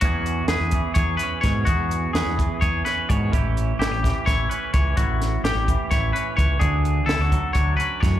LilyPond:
<<
  \new Staff \with { instrumentName = "Clean electric guitar" } { \time 7/8 \key e \major \tempo 4 = 128 fis'4 gis'4 cis''8 b'8 cis''8 | fis'4 gis'4 cis''8 b'8 cis''8 | r4 g'4 cis''8 b'8 cis''8 | fis'4 g'4 cis''8 b'8 cis''8 |
gis'4 a'4 cis''8 b'8 cis''8 | }
  \new Staff \with { instrumentName = "Clean electric guitar" } { \time 7/8 \key e \major << { <e cis' gis'>4 b'4 gis'8 cis'4 | gis'4 b'4 gis'8 cis'4 | <e cis' e' g'>4 e'16 g'8. e'8 cis'4 | e'4 g'4 e'8 cis'4 |
d'4 e'16 fis'8. d'8 cis'4 | } \\ { e,4. e4. b,8 | e,4. e4. b,8 | a,4. e4. e8 | a,4. e4. e8 |
d4. fis4. a,8 | } >> }
  \new Staff \with { instrumentName = "Fingered electric bass" } { \clef bass \time 7/8 \key e \major e,4 e,16 e,8 r16 e,8 r8 gis,8 | e,4 e,16 e,8 r16 e,8 r8 gis,8 | a,,4 a,,16 a,,8 r16 a,,8 r8 cis,8 | a,,4 a,,16 a,,8 r16 a,,8 r8 cis,8 |
d,4 d,16 d,8 r16 d,8 r8 fis,8 | }
  \new DrumStaff \with { instrumentName = "Drums" } \drummode { \time 7/8 <hh bd>8 hh8 <hh sn>8 <hh bd>8 <hh bd>8 hh8 <hh bd sn>8 | <hh bd>8 hh8 <hh sn>8 <hh bd>8 <hh bd>8 <hh sn>8 <hh bd>8 | <hh bd>8 hh8 <hh sn>8 <hh bd sn>8 <hh bd sn>8 hh8 <hh bd>8 | <hh bd>8 <hh sn>8 <hh sn>8 <hh bd>8 <hh bd sn>8 hh8 <hh bd>8 |
<hh bd>8 hh8 <hh sn>8 <hh bd>8 <hh bd>8 hh8 <hh bd sn>8 | }
>>